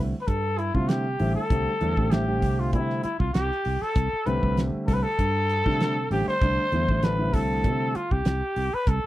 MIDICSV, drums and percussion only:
0, 0, Header, 1, 2, 480
1, 0, Start_track
1, 0, Key_signature, 0, "major"
1, 0, Tempo, 614125
1, 1177, Time_signature, 4, 2, 24, 8
1, 7084, End_track
2, 0, Start_track
2, 0, Title_t, "Drums"
2, 216, Note_on_c, 9, 36, 69
2, 218, Note_on_c, 9, 42, 74
2, 295, Note_off_c, 9, 36, 0
2, 296, Note_off_c, 9, 42, 0
2, 457, Note_on_c, 9, 42, 57
2, 536, Note_off_c, 9, 42, 0
2, 583, Note_on_c, 9, 36, 68
2, 661, Note_off_c, 9, 36, 0
2, 693, Note_on_c, 9, 42, 75
2, 700, Note_on_c, 9, 38, 99
2, 772, Note_off_c, 9, 42, 0
2, 779, Note_off_c, 9, 38, 0
2, 933, Note_on_c, 9, 46, 69
2, 1011, Note_off_c, 9, 46, 0
2, 1175, Note_on_c, 9, 36, 99
2, 1175, Note_on_c, 9, 42, 73
2, 1253, Note_off_c, 9, 36, 0
2, 1253, Note_off_c, 9, 42, 0
2, 1413, Note_on_c, 9, 42, 53
2, 1491, Note_off_c, 9, 42, 0
2, 1541, Note_on_c, 9, 36, 74
2, 1620, Note_off_c, 9, 36, 0
2, 1653, Note_on_c, 9, 42, 74
2, 1660, Note_on_c, 9, 38, 105
2, 1731, Note_off_c, 9, 42, 0
2, 1738, Note_off_c, 9, 38, 0
2, 1893, Note_on_c, 9, 46, 69
2, 1894, Note_on_c, 9, 36, 81
2, 1971, Note_off_c, 9, 46, 0
2, 1972, Note_off_c, 9, 36, 0
2, 2132, Note_on_c, 9, 42, 77
2, 2134, Note_on_c, 9, 36, 76
2, 2211, Note_off_c, 9, 42, 0
2, 2212, Note_off_c, 9, 36, 0
2, 2266, Note_on_c, 9, 38, 33
2, 2344, Note_off_c, 9, 38, 0
2, 2372, Note_on_c, 9, 42, 60
2, 2450, Note_off_c, 9, 42, 0
2, 2501, Note_on_c, 9, 36, 71
2, 2579, Note_off_c, 9, 36, 0
2, 2613, Note_on_c, 9, 42, 81
2, 2620, Note_on_c, 9, 38, 104
2, 2691, Note_off_c, 9, 42, 0
2, 2698, Note_off_c, 9, 38, 0
2, 2747, Note_on_c, 9, 38, 34
2, 2826, Note_off_c, 9, 38, 0
2, 2851, Note_on_c, 9, 46, 72
2, 2929, Note_off_c, 9, 46, 0
2, 2988, Note_on_c, 9, 38, 31
2, 3066, Note_off_c, 9, 38, 0
2, 3091, Note_on_c, 9, 42, 85
2, 3094, Note_on_c, 9, 36, 101
2, 3169, Note_off_c, 9, 42, 0
2, 3172, Note_off_c, 9, 36, 0
2, 3333, Note_on_c, 9, 42, 55
2, 3411, Note_off_c, 9, 42, 0
2, 3462, Note_on_c, 9, 36, 71
2, 3540, Note_off_c, 9, 36, 0
2, 3575, Note_on_c, 9, 42, 79
2, 3582, Note_on_c, 9, 38, 102
2, 3653, Note_off_c, 9, 42, 0
2, 3660, Note_off_c, 9, 38, 0
2, 3815, Note_on_c, 9, 36, 76
2, 3815, Note_on_c, 9, 46, 69
2, 3822, Note_on_c, 9, 38, 35
2, 3893, Note_off_c, 9, 36, 0
2, 3893, Note_off_c, 9, 46, 0
2, 3900, Note_off_c, 9, 38, 0
2, 4054, Note_on_c, 9, 36, 73
2, 4055, Note_on_c, 9, 42, 80
2, 4132, Note_off_c, 9, 36, 0
2, 4133, Note_off_c, 9, 42, 0
2, 4295, Note_on_c, 9, 42, 58
2, 4373, Note_off_c, 9, 42, 0
2, 4423, Note_on_c, 9, 36, 72
2, 4501, Note_off_c, 9, 36, 0
2, 4537, Note_on_c, 9, 42, 73
2, 4544, Note_on_c, 9, 38, 104
2, 4615, Note_off_c, 9, 42, 0
2, 4622, Note_off_c, 9, 38, 0
2, 4775, Note_on_c, 9, 46, 68
2, 4854, Note_off_c, 9, 46, 0
2, 4910, Note_on_c, 9, 38, 32
2, 4988, Note_off_c, 9, 38, 0
2, 5014, Note_on_c, 9, 36, 99
2, 5014, Note_on_c, 9, 42, 67
2, 5092, Note_off_c, 9, 36, 0
2, 5092, Note_off_c, 9, 42, 0
2, 5253, Note_on_c, 9, 42, 48
2, 5331, Note_off_c, 9, 42, 0
2, 5381, Note_on_c, 9, 36, 72
2, 5460, Note_off_c, 9, 36, 0
2, 5491, Note_on_c, 9, 42, 76
2, 5498, Note_on_c, 9, 38, 98
2, 5569, Note_off_c, 9, 42, 0
2, 5576, Note_off_c, 9, 38, 0
2, 5733, Note_on_c, 9, 36, 77
2, 5733, Note_on_c, 9, 46, 69
2, 5811, Note_off_c, 9, 36, 0
2, 5811, Note_off_c, 9, 46, 0
2, 5972, Note_on_c, 9, 42, 76
2, 5973, Note_on_c, 9, 36, 68
2, 6051, Note_off_c, 9, 36, 0
2, 6051, Note_off_c, 9, 42, 0
2, 6214, Note_on_c, 9, 42, 57
2, 6292, Note_off_c, 9, 42, 0
2, 6341, Note_on_c, 9, 36, 71
2, 6419, Note_off_c, 9, 36, 0
2, 6449, Note_on_c, 9, 42, 83
2, 6456, Note_on_c, 9, 38, 106
2, 6527, Note_off_c, 9, 42, 0
2, 6534, Note_off_c, 9, 38, 0
2, 6692, Note_on_c, 9, 46, 68
2, 6770, Note_off_c, 9, 46, 0
2, 6932, Note_on_c, 9, 42, 81
2, 6933, Note_on_c, 9, 36, 100
2, 7010, Note_off_c, 9, 42, 0
2, 7011, Note_off_c, 9, 36, 0
2, 7084, End_track
0, 0, End_of_file